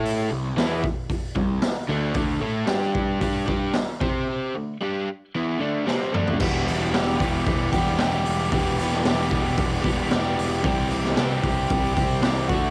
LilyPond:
<<
  \new Staff \with { instrumentName = "Overdriven electric guitar" } { \time 4/4 \key e \minor \tempo 4 = 113 <a e' a'>8 <c g>8 <e b e'>8 r4 <c g>8 r8 <d a d'>8 | <d a d'>8 <a e' a'>8 <g d' g'>4 <g d' g'>8 <g d' g'>8 r8 <c' g' c''>8~ | <c' g' c''>8 <d a>8 <g d' g'>8 r8 <e b e'>8 <d a d'>8 <c g c'>8 <d a d'>8 | <e, b, e g b g'>8 <e g b g'>8 <e, b, e g b g'>8 <e g b g'>4 <e g b g'>8 <e g b g'>4 |
<e, b, e g b g'>8 <e g b g'>8 <e, b, e g b g'>8 <e g b g'>4 <e g b g'>8 <e g b g'>4 | <c e g c' g'>8 <g c' g'>8 <c e g c' g'>8 <g c' g'>4 <g c' g'>8 <e g c' g'>8 <d a d' fis'>8 | }
  \new Staff \with { instrumentName = "Picked electric bass" } { \clef bass \time 4/4 \key e \minor a,8 c,8 e,8 r4 c,8 r8 d,8 | d,8 a,8 g,4 g,8 g,8 r8 c8 | r1 | e,,8 e,,8 e,,8 e,,8 e,,8 e,,8 e,,8 e,,8 |
e,,8 e,,8 e,,8 e,,8 e,,8 e,,8 e,,8 e,,8 | c,8 c,8 c,8 c,8 c,8 c,8 c,8 d,8 | }
  \new DrumStaff \with { instrumentName = "Drums" } \drummode { \time 4/4 hho4 <hho sn>8 bd8 <hho bd>8 bd8 <hho sn>4 | <hho bd>4 <hho sn>8 bd8 <hho bd>8 bd8 <hho sn>8 bd8 | r4 r4 r4 sn8 toml16 tomfh16 | <cymc bd>8 hho8 <hho sn>8 <hho bd>8 <hho bd>8 <hho bd>8 <hho sn>8 hho8 |
<hho bd>8 hho16 sn16 <hho sn>8 <hho bd>8 <hho bd>8 <hho bd>8 <hho sn>8 hho8 | <hho bd>8 hho16 sn16 <hho sn>8 <hho bd>8 <hho bd>8 <hho bd>8 <hho sn>8 <hho bd>8 | }
>>